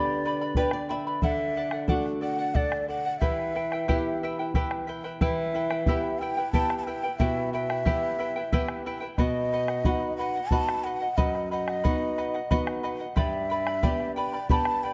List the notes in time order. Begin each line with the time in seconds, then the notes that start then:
Already playing: D3 B3 D4 G4 B4 D5 G5 B5
0.05 bombo rim
0.25 B4 D5 G5 B5
0.41 B4 D5 B5
0.55 G4 B4 D5 G5 B5, bombo low
0.71 D5, bombo rim
0.89 B4 D5 E5 G5 B5
1.07 B4 D5 B5
1.22 D3 A4 D5 E5 F#5, bombo rim, bombo low
1.56 A4 D5 F#5
1.71 D5 F#5, bombo rim
1.88 A3 D4 F#4 A4 D5 F#5, bombo low
2.06 bombo rim
2.21 A4 D5 F#5
2.39 D5 F#5
2.54 A4 D5 F#5, bombo low
2.72 bombo rim
2.88 A4 D5 F#5
3.06 D5 F#5
3.19 E3 E4 G4 B4 E5 G5, bombo low
3.39 bombo rim
3.55 E4 B4 E5 G5, bombo rim
3.72 E4 B4 G5, bombo rim
3.88 B3 E4 G4 B4 E5 G5, bombo low
4.23 E4 B4 E5 G5
4.38 E4 B4 G5, bombo rim
4.54 E4 G4 B4 E5 G5, bombo low
4.71 bombo rim
4.87 E4 B4 E5 G5
5.04 E4 B4 G5, bombo rim
5.21 E3 E4 G4 B4 E5 G5, bombo rim, bombo low
5.54 E4 B4 E5 G5
5.70 E4 B4 G5, bombo rim
5.86 B3 E4 G4 B4 E5 G5, bombo low
6.03 bombo rim
6.19 E4 B4 E5 G5
6.37 E4 B4 G5
6.53 B3 E4 G4 B4 E5 G5 A5, bombo low
6.70 bombo rim
6.78 A5
6.84 E4 B4 E5 G5
7.03 E4 B4 G5
7.18 B2 E4 G4 B4 E5 G5, bombo rim, bombo low
7.53 E4 B4 E5 G5
7.70 E4 B4 G5, bombo rim
7.85 B3 E4 G4 B4 E5 G5, bombo low
8.03 bombo rim
8.19 E4 B4 E5 G5
8.36 E4 B4 G5
8.52 B3 E4 G4 B4 E5 G5, bombo low
8.68 bombo rim
8.86 E4 B4 E5 G5
9.00 E4 B4 G5
9.18 B2 B4 D#5 F#5, bombo rim, bombo low
9.53 B4 D#5 F#5
9.68 D#5 F#5, bombo rim
9.85 B3 D#4 F#4 B4 D#5 F#5, bombo low
10.17 B4 D#5 F#5
10.36 D#5 F#5
10.50 B3 D#4 F#4 B4 D#5 F#5 A5, bombo low
10.69 bombo rim
10.84 B4 D#5 F#5
11.01 D#5 F#5
11.17 F#2 B4 D#5 F#5, bombo low
11.35 bombo rim
11.51 B4 D#5 F#5, bombo rim
11.68 D#5 F#5, bombo rim
11.84 B3 D#4 F#4 B4 D#5 F#5, bombo low
12.18 B4 D#5 F#5, bombo rim
12.34 D#5 F#5, bombo rim
12.51 B3 D#4 F#4 B4 D#5 F#5, bombo rim, bombo low
12.67 bombo rim
12.83 B4 D#5 F#5, bombo rim
13.00 D#5 F#5
13.16 G2 G4 B4 D5 E5 G5 B5, bombo rim, bombo low
13.50 B4 D5 G5 B5
13.67 B4 D5 B5, bombo rim
13.83 B3 D4 G4 B4 D5 G5 B5, bombo low
14.00 bombo rim
14.16 B4 D5 G5 B5
14.34 B4 D5 B5
14.49 B3 D4 G4 B4 D5 G5 A5 B5, bombo low
14.65 bombo rim
14.83 B4 D5 G5 B5